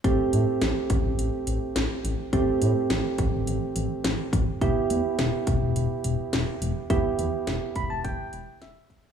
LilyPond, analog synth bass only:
\new Staff \with { instrumentName = "Analog synth bass" } { \clef bass \time 4/4 \key a \minor \tempo 4 = 105 a,,16 r16 a,16 r16 a,,16 r16 a,,16 a,,16 a,,16 r16 a,,16 r16 a,,16 r16 a,,16 r16 | a,,16 r16 a,16 r16 a,,16 r16 a,,16 a,,16 a,,16 r16 a,,16 r16 a,,16 r16 a,,16 r16 | e,,16 r16 e,16 r16 e,,16 r16 e,,16 e,,16 e,,16 r16 e,,16 r16 e,,16 r16 e,,16 r16 | e,,16 r16 e,16 r16 e,,16 r16 e,,16 e,,16 e,,16 r16 e,,16 r16 e,,16 r16 e,,16 r16 | }